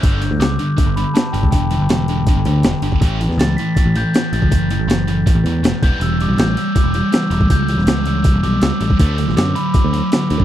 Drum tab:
HH |o-o-o-o-o-o-o-o-|o-o-o-o-o-o-o-o-|o-o-o-o-o-o-o-o-|o-o-o-o-o-o-o-o-|
SD |----o-------o---|----o-------o---|---oo-------o---|----o-------o---|
BD |o-------o------o|o-------o------o|o-------o------o|o-------o-----o-|

HH |o-o-o-o-o-o-o-o-|o-o-o-o-o-o-o-o-|o-o-o-o-o-o-o-o-|
SD |----o-------o---|---oo-------o---|---oo-------o---|
BD |--------o------o|o-------o------o|o-------o------o|